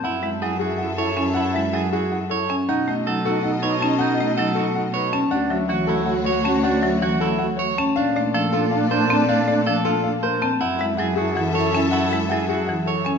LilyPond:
<<
  \new Staff \with { instrumentName = "Grand piano" } { \time 7/8 \key fis \minor \tempo 4 = 159 fis''8 e''8 fis''8 gis'8 fis''8 a'8 gis''8 | fis''8 e''8 fis''8 gis'8 fis''8 a'8 gis''8 | fis''8 dis''8 fis''8 a'8 fis''8 b'8 a''8 | fis''8 dis''8 fis''8 a'8 fis''8 b'8 a''8 |
fis''8 e''8 fis''8 a'8 fis''8 cis''8 a''8 | fis''8 e''8 fis''8 a'8 fis''8 cis''8 a''8 | f''8 d''8 f''8 a'8 f''8 bes'8 a''8 | f''8 d''8 f''8 a'8 f''8 bes'8 a''8 |
fis''8 e''8 fis''8 gis'8 fis''8 a'8 gis''8 | fis''8 e''8 fis''8 gis'8 fis''8 a'8 gis''8 | }
  \new Staff \with { instrumentName = "String section" } { \time 7/8 \key fis \minor <a' e''>2.~ <a' e''>8~ | <a' e''>2. r8 | <a' dis''>2.~ <a' dis''>8~ | <a' dis''>2. r8 |
<fis' cis''>2.~ <fis' cis''>8~ | <fis' cis''>2. r8 | <a' d''>2.~ <a' d''>8~ | <a' d''>2. r8 |
<a' e''>2.~ <a' e''>8~ | <a' e''>2. r8 | }
  \new Staff \with { instrumentName = "Clean electric guitar" } { \time 7/8 \key fis \minor e'8 r8 gis'8 fis'8 r8 cis''8 r8 | e'8 r8 gis'8 fis'8 r8 cis''8 r8 | dis'8 r8 a'8 fis'8 r8 cis''8 r8 | dis'8 r8 a'8 fis'8 r8 cis''8 r8 |
d'8 r8 fis'8 e'8 r8 cis''8 r8 | d'8 r8 fis'8 e'8 r8 cis''8 r8 | d'8 r8 a'8 f'8 r8 c''8 r8 | d'8 r8 a'8 f'8 r8 c''8 r8 |
e'8 r8 gis'8 fis'8 r8 cis''8 r8 | e'8 r8 gis'8 fis'8 r8 cis''8 r8 | }
  \new Staff \with { instrumentName = "Alto flute" } { \time 7/8 \key fis \minor e'8 e'8 e'8 e'8 e'8 e'8 e'8 | e'8 e'8 e'8 e'8 e'8 e'8 r8 | dis'8 dis'8 dis'8 dis'8 dis'8 dis'8 dis'8 | dis'8 dis'8 dis'8 dis'8 dis'8 dis'8 r8 |
fis'8 fis'8 fis'8 fis'8 fis'8 fis'8 fis'8 | fis'8 fis'8 fis'8 fis'8 fis'8 fis'8 r8 | d'8 d'8 d'8 d'8 d'8 d'8 d'8 | d'8 d'8 d'8 d'8 d'8 d'8 r8 |
e'8 e'8 e'8 e'8 e'8 e'8 e'8 | e'8 e'8 e'8 e'8 e'8 e'8 r8 | }
  \new Staff \with { instrumentName = "Marimba" } { \clef bass \time 7/8 \key fis \minor r8 gis8 fis8 r4. cis'8 | r8 gis8 fis8 r4. cis'8 | r8 a8 fis8 r4. cis'8 | r8 a8 fis8 r4. cis'8 |
r8 fis8 e8 r4. cis'8 | r8 fis8 e8 r4. cis'8 | r8 a8 f8 r4. c'8 | r8 a8 f8 r4. c'8 |
r8 gis8 fis8 r8 e8 r8 cis'8 | r8 gis8 fis8 r8 e8 r8 cis'8 | }
  \new Staff \with { instrumentName = "Cello" } { \clef bass \time 7/8 \key fis \minor fis,2.~ fis,8~ | fis,2.~ fis,8 | b,2.~ b,8~ | b,2.~ b,8 |
d,2.~ d,8~ | d,2.~ d,8 | bes,2.~ bes,8~ | bes,2.~ bes,8 |
fis,2.~ fis,8~ | fis,2.~ fis,8 | }
>>